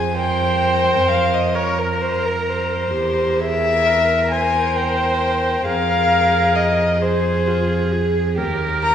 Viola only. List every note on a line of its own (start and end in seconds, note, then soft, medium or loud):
0.00 0.11 G#4 medium
0.16 1.56 C5 loud
1.55 2.93 A#4 medium
2.94 3.41 G4 medium
3.40 3.87 G#4 medium
3.86 4.33 A#4 medium
4.32 5.68 C5 medium
5.66 7.02 A#4 medium
7.02 7.49 G#4 medium
7.48 7.93 F4 medium
7.92 8.39 G#4 medium
8.37 8.95 A#4 medium